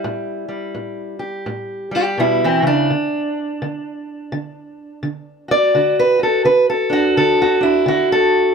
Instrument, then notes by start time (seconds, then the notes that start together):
steel-string acoustic guitar
Already playing: G3 E4
0.04 A2
0.48 G3
0.75 A2
1.19 G4
1.46 A2
1.91 G3 E4
1.96 G4
2.18 B2 G3 E4
2.44 E3 C4
2.62 C#3
2.67 D4
2.90 D3
3.62 D3
4.32 D3
5.03 D3
5.48 F#4 D5
5.75 D3 F#4
5.99 B4
6.19 F#4 A4
6.45 D3 B4
6.70 A4
6.90 D4 F#4
7.17 D3 A4
7.42 F#4
7.61 D4 E4
7.86 D3 F#4
8.12 A4